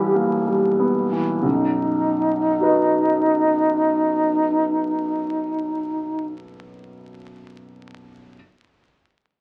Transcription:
Already playing: B1 B2 E3 G3 B3 G4
0.14 A#3
0.47 G3
0.79 B3
1.12 E3
1.42 B1 F#2 D#4
2.60 F#4 B4
2.65 D#5

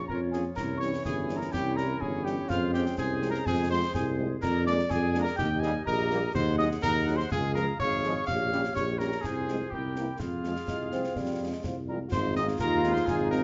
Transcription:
Already playing: F3 C#4
0.07 F2 F4 A#4 C#5 A#5, concert bass drum
0.31 F3 A#3 C#4 G#4 G#5, snare
0.56 C2 E3 C#4 E4 A#4 C#5 A#5, concert bass drum, snare, crash
0.77 C#5 C#6
0.82 E3 G3 C#4, snare
0.94 snare
1.05 G1 G#4 G#5, concert bass drum, snare
1.29 E3 G3 C#4, snare
1.36 A#4 A#5
1.41 snare
1.52 C2 E4 G4 C#5 G5, concert bass drum, snare
1.75 E3 G3 C#4 A#4 A#5, snare
2.00 G1 G#4 G#5, concert bass drum
2.23 E3 G3 C#4 G4 G5, snare
2.49 F2 G#3 F4 G#4 C5 F5, concert bass drum, snare
2.73 F3 G#3 C4 G4 G5, snare
2.86 snare
2.98 C2 G#4 C5 G#5, concert bass drum, snare
3.21 F3 G#3 C4, snare
3.29 A#4 A#5
3.34 snare
3.46 F2 C4 G#4 C5 G#5, concert bass drum, snare
3.69 F3 G#3 C4 C5 C6
3.94 C2 G#4 C5 G#5, concert bass drum, snare
4.17 F3 G#3 C4
4.42 F2 G#4 A#4 D5 A#5, concert bass drum, snare, crash
4.65 G#3 A#3 D4 D5 D6, snare
4.79 snare
4.89 F2 G#4 D5 G#5, concert bass drum, snare
5.14 G#3 A#3 D4, snare
5.21 A#4 A#5
5.27 snare
5.35 D#2 G4 D#5 G5, concert bass drum, snare
5.60 G3 A#3 D#4 G#5, snare
5.64 G#4
5.85 A#1 G4 A#4 D#5 A#5, concert bass drum
6.10 G3 A#3 D#4, snare
6.34 D#2 G#4 C5 F#5 C6, concert bass drum, snare
6.58 F#3 G#3 D#4 D#5 D#6, snare
6.71 snare
6.82 D#2 A#4 A#5, concert bass drum, snare
7.06 F#3 G#3 D#4, snare
7.16 C5 C6, snare
7.32 C#2 G#4 F5 G#5, concert bass drum, snare
7.54 F3 G#3 G#4 A#4 A#5, snare
7.80 G#1 G#4 C#5 F5 C#6, concert bass drum
8.03 F3 G#3 G#4, snare
8.27 A#1 G4 C#5 F5 F6, concert bass drum, snare, crash
8.51 G3 C#4 G4, snare
8.64 snare
8.75 A#1 G4 C#5 C#6, concert bass drum, snare
8.98 G3 C#4 G4 A#4 A#5, snare
9.12 snare
9.21 C2 G#4, concert bass drum, snare
9.26 F4 C5 G#5
9.47 F3 G#3 C4 F4, snare
9.70 C2 G4 A#4 G5, concert bass drum
9.74 E4
9.95 E3 A#3 C4 E4, snare
10.19 F2 F4 G#4 F5, concert bass drum, snare
10.44 F3 G#3 C4 F4, snare
10.56 snare
10.68 C2 G#3, concert bass drum, snare
10.91 F3 G#3 C4 F4, snare
11.04 snare
11.16 F2 G3, concert bass drum, snare
11.40 F3 G#3 C4 F4
11.49 G#3
11.64 C2 F3, concert bass drum, snare
11.87 F3 G3 G#3 C4 F4 A#4 A#5
12.11 G#1 D#4 F4 G#4 C5 C6, concert bass drum, snare, crash
12.35 G#3 C4 D#4 D#5 D#6, snare
12.48 snare
12.59 D#2 A#4 A#5, concert bass drum, snare
12.83 G#3 C4 D#4, snare
12.92 C5 C6, snare
13.06 G#1 G#4 G#5, concert bass drum, snare
13.31 G#3 C4 D#4 A#4 A#5, snare

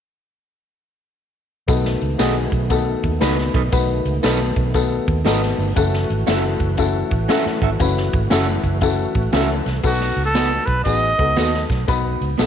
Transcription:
1.68 B1 D#3 A3 B3 D#4 F#4 A4, kick, closed hi-hat, tambourine
1.85 snare
2.01 C#2, closed hi-hat
2.19 B1 B3 D#4 F#4 G#4 A4 B4 D#5, snare, closed hi-hat, tambourine
2.52 B1, kick, closed hi-hat
2.70 B3 D#4 F#4 A4, kick, closed hi-hat, tambourine
3.03 D#2, kick, closed hi-hat
3.21 C#2 B3 D#4 F#4 A4 B4 D#5, snare, closed hi-hat, tambourine
3.38 snare
3.54 B1 D#4 A4 B4 D#5, kick, closed hi-hat
3.72 B1 B3 D#4 F#4 B4, kick, closed hi-hat, tambourine
4.05 C#2, closed hi-hat
4.23 B1 B3 D#4 F#4 A4 B4 D#5, snare, closed hi-hat, tambourine
4.56 B1, kick, closed hi-hat
4.74 B3 D#4 F#4 A4, kick, closed hi-hat, tambourine
5.08 D#2, kick, closed hi-hat
5.25 G#1 B3 D#4 F#4 A4 B4 D#5, snare, closed hi-hat, tambourine
5.43 snare
5.58 G1, open hi-hat
5.76 F#1 E3 A3 C#4 E4 F#4 A4, kick, closed hi-hat, tambourine
5.93 snare
6.10 G#1, closed hi-hat
6.27 C#4 E4 F#4 A4 E5, snare, closed hi-hat, tambourine
6.60 F#1, kick, closed hi-hat
6.77 C#4 E4 F#4 A4, kick, closed hi-hat, tambourine
7.11 A1, kick, closed hi-hat
7.28 C#4 E4 F#4 A4 E5, snare, closed hi-hat, tambourine
7.46 muted fingered electric bass stroke, snare
7.62 G#1 C#4 F#4 A4 E5, kick, closed hi-hat
7.80 F#1 C#4 E4 F#4 B4, kick, closed hi-hat, tambourine
7.97 snare
8.13 G#1, kick, closed hi-hat
8.30 F#1 C#4 E4 F#4 A4 E5, snare, closed hi-hat, tambourine
8.64 F#1, kick, closed hi-hat
8.81 C#4 E4 F#4 A4, kick, closed hi-hat, tambourine
9.15 A1, kick, closed hi-hat
9.33 C#2 C#4 E4 F#4 A4 E5, snare, closed hi-hat, tambourine
9.66 C2, snare, closed hi-hat
9.83 B1 B3 D#4 F#4 A4, kick, crash, tambourine
10.00 snare
10.16 C#2, closed hi-hat
10.25 A4
10.34 B3 D#4 F#4 A4 D#5, snare, closed hi-hat, tambourine
10.66 B1 B4, kick, closed hi-hat
10.84 A1 B3 D#4 F#4 G#4 D#5, kick, closed hi-hat, tambourine
11.18 C#2 B3 D#4 F#4 A4, kick, closed hi-hat
11.36 D#2 B3 D#4 F#4 A4 D#5, snare, closed hi-hat, tambourine
11.54 snare
11.70 B1, kick, snare, closed hi-hat
11.88 B1 B3 D#4 F#4 B4, kick, closed hi-hat, tambourine
12.21 C#2, closed hi-hat
12.38 B1 B3 D#4 F#4 A4 D#5, snare, closed hi-hat, tambourine

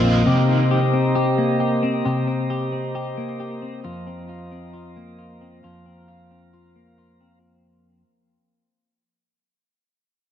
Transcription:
Already playing: A#1 F2 D#3 A#3 C4 F4 C5 D#5 A#5
0.04 C4
0.26 C3 G4 C5
0.49 C4
0.71 G4
0.93 C4
1.15 G4
1.38 A#3
1.60 G4
1.83 C4
2.05 C3 G4
2.27 C4
2.50 G4
2.72 C4
2.95 G4
3.17 A#3
3.40 G4
3.62 C4
3.84 F2 F4 A#5
4.07 C4
4.29 F4
4.51 C4
4.73 F4
4.96 A#3
5.19 F4
5.41 C4
5.63 F2 F4 F5
5.86 C4
6.08 F4
6.31 C4
6.53 F4
6.76 A#3
6.98 F4
7.21 C4

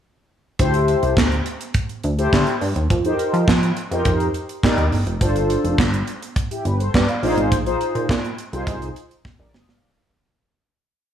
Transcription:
0.59 D2 E4 G4 A4 C5, kick, closed hi-hat
0.74 closed hi-hat
0.88 closed hi-hat
1.03 C2, closed hi-hat
1.17 D2, kick, snare, clap
1.32 closed hi-hat
1.46 closed hi-hat
1.61 closed hi-hat
1.74 kick, closed hi-hat
1.89 closed hi-hat
2.04 D2, closed hi-hat
2.18 E4 G4 A4 C5, closed hi-hat
2.33 D3, kick, snare, clap
2.47 closed hi-hat
2.61 G2, open hi-hat
2.76 D#2, closed hi-hat
2.90 F2 A#4 C5, kick, closed hi-hat
3.05 D#4 G4 A4 C5, closed hi-hat
3.12 A#4
3.19 closed hi-hat
3.33 F3, closed hi-hat
3.48 F3, kick, snare, clap
3.63 closed hi-hat
3.77 closed hi-hat
3.91 F2 D#4 G4 A#4 C5, closed hi-hat
4.05 F2, kick, closed hi-hat
4.20 closed hi-hat
4.34 closed hi-hat
4.49 closed hi-hat
4.63 D#4 G4 A#4 D5, kick, snare, clap
4.78 D#2, closed hi-hat
4.92 G1, open hi-hat
5.06 F1 A#4 C5, closed hi-hat
5.21 G1 D4 F4 A4 C5, kick, closed hi-hat
5.36 closed hi-hat
5.50 closed hi-hat
5.64 F1, closed hi-hat
5.78 G1, kick, snare, clap
5.94 closed hi-hat
6.07 closed hi-hat
6.22 closed hi-hat
6.36 kick, closed hi-hat
6.51 E4 G4, closed hi-hat
6.65 G1 G4 B4, closed hi-hat
6.80 A4 C5, closed hi-hat
6.94 G2 B4 D5, kick, snare, clap
7.09 D5 F5, closed hi-hat
7.23 A#1 D#4 F4 G#4 C5, open hi-hat
7.37 G#1, closed hi-hat
7.52 A#1, kick, closed hi-hat
7.66 D#4 F4 G#4 C5, closed hi-hat
7.81 closed hi-hat
7.95 A#2, closed hi-hat
8.09 A#2, kick, snare, clap
8.25 closed hi-hat
8.38 closed hi-hat
8.52 C2 D#4 F4 G#4 C5, closed hi-hat
8.67 C2, kick, closed hi-hat
8.82 closed hi-hat
8.96 closed hi-hat
9.11 closed hi-hat
9.25 kick, snare
9.39 A#1 A#4 D5
9.53 G1 C5 D#5, snare
9.68 G#1 D5 F5, snare

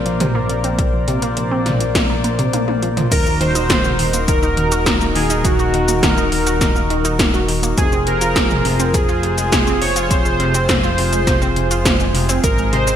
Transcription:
Already playing: A#1 A#3 A#4 C5 D5
0.06 F3, closed hi-hat
0.20 C3, closed hi-hat, mid tom
0.35 A#3
0.49 C3, closed hi-hat
0.64 C4, closed hi-hat
0.79 C3, kick, closed hi-hat
0.93 F3
1.08 C3, closed hi-hat
1.22 A#3, closed hi-hat
1.37 C3, closed hi-hat
1.51 C4
1.66 C3, snare, closed hi-hat, mid tom
1.80 F3, closed hi-hat
1.95 C3, kick, snare, closed hi-hat
2.10 A#3
2.24 A#3, closed hi-hat
2.39 C3, closed hi-hat
2.53 A#3, closed hi-hat, high tom
2.68 A#3, high tom
2.82 F3, closed hi-hat
2.97 F3, closed hi-hat, mid tom
3.11 D#1 D#3 D#4 F#4 A#4, kick, closed hi-hat, crash, cabasa
3.26 A#3, cabasa
3.41 D#3 C5, closed hi-hat
3.55 D#4, closed hi-hat, cabasa
3.70 D#3, kick, snare, closed hi-hat, cabasa
3.84 F#4, mid tom, cabasa
3.99 D#3, open hi-hat
4.13 A#3, closed hi-hat, cabasa
4.28 D#3 A#4, kick, closed hi-hat, cabasa
4.43 D#4, cabasa
4.57 D#3, closed hi-hat
4.72 F#4, closed hi-hat, cabasa
4.86 D#3, kick, snare, closed hi-hat, cabasa
5.01 A#3, cabasa
5.15 D#3 G#4, open hi-hat
5.30 D#4, closed hi-hat, cabasa
5.45 D#3 F#4, kick, closed hi-hat, cabasa
5.59 F#4, cabasa
5.74 D#3, closed hi-hat
5.88 A#3, closed hi-hat, cabasa
6.03 D#3 A#4, kick, snare, closed hi-hat, cabasa
6.17 D#4, cabasa
6.32 D#3, open hi-hat
6.47 F#4, closed hi-hat, cabasa
6.61 D#3, kick, snare, closed hi-hat, cabasa
6.76 A#3, cabasa
6.90 D#3, closed hi-hat
7.05 D#4, closed hi-hat, cabasa
7.19 D#3, kick, snare, closed hi-hat, cabasa
7.34 F#4, cabasa
7.48 D#3, open hi-hat
7.63 A#3, closed hi-hat, cabasa
7.78 F1 C3 F4 G#4 C5, kick, closed hi-hat, cabasa
7.92 C4, cabasa
8.07 C3 A#4, closed hi-hat
8.21 F4, closed hi-hat, cabasa
8.36 C3, kick, snare, closed hi-hat, cabasa
8.50 G#3, mid tom, cabasa
8.65 C3, open hi-hat
8.80 C4, closed hi-hat, cabasa
8.94 C3 G#4, kick, closed hi-hat, cabasa
9.09 F4, cabasa
9.23 C3, closed hi-hat
9.38 G#3, closed hi-hat, cabasa
9.52 C3, kick, snare, closed hi-hat, cabasa
9.67 C4, cabasa
9.81 C3 C#5, open hi-hat
9.96 F4, closed hi-hat, cabasa
10.10 C3 C5, kick, closed hi-hat, cabasa
10.25 G#3, cabasa
10.40 C3, closed hi-hat
10.54 C4, closed hi-hat, cabasa
10.69 C3 C5, kick, snare, closed hi-hat, cabasa
10.83 F4, cabasa
10.98 C3, open hi-hat
11.13 G#3, closed hi-hat, cabasa
11.27 C3, kick, snare, closed hi-hat, cabasa
11.42 C4, cabasa
11.56 C3, closed hi-hat
11.71 F4, closed hi-hat, cabasa
11.85 C3, kick, snare, closed hi-hat, cabasa
12.00 G#3, cabasa
12.14 C3, open hi-hat
12.29 C4, closed hi-hat, cabasa
12.44 G#1 C3 G#3 A#4 C5 D#5, kick, closed hi-hat, cabasa
12.58 G#3, cabasa
12.73 C3 C5, closed hi-hat
12.87 C4, closed hi-hat, cabasa

